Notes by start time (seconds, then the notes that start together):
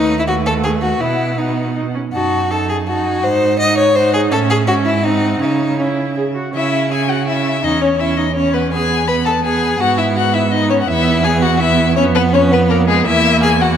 Already playing: D#2 A3 D#4 B4
0.19 E4
0.28 A3 F#4 B4
0.46 A4
0.64 G#4
0.82 F#4
1.01 B2 B3 E4 F#5
1.38 B3 D#4 F#5
1.76 D#4
1.94 C#4
2.12 F#2 D#4 F#4 A5
2.49 D#4 A4 A5
2.69 G#4
2.86 D#4 F#4 A5
3.05 G#5
3.22 G#2 D#4 C5 F#5
3.59 D#4 D#5 F#5
3.78 C#5
3.95 D#4 C5 F#5
4.14 G#4
4.32 A2 C#4 A4 E5
4.50 G#4
4.67 G#2 C#4 F#4 E5
4.86 E4
5.03 C4 D#4 F#5
5.41 C#3 C#4 D#4 E5
5.78 C#4 E4 E5
6.16 G#4
6.35 F#4
6.54 C#3 C#4 E4 E5
6.91 C#4 G#4 G#5
7.09 F#4 F#5
7.27 C#4 E4 E5
7.63 E2 C#4 D#4 D#5
7.81 C#4 C#5
7.99 C#4 E4 E5
8.17 D#4 D#5
8.35 C#4 C#5
8.54 B3 B4
8.72 B3 G#4 G#5
9.07 B3 B4 B5
9.25 A4 A5
9.44 B3 G#4 G#5
9.80 G#2 B3 F#4 F#5
9.98 E4 E5
10.16 F#4 F#5
10.34 E4 E5
10.51 D#4 D#5
10.70 C#4 C#5
10.81 F#5
10.88 E2 B3 E4 E5
11.24 B3 G#4 G#5
11.42 F#4 F#5
11.60 B3 E4 E5
11.96 F2 B3 C#4 C#5
12.15 B3 B4
12.33 B3 C#4 C#5
12.52 B3 B4
12.70 A#3 A#4
12.88 G#3 G#4
13.06 E2 A#3 E4 E5
13.42 G#4 G#5
13.61 F#4 F#5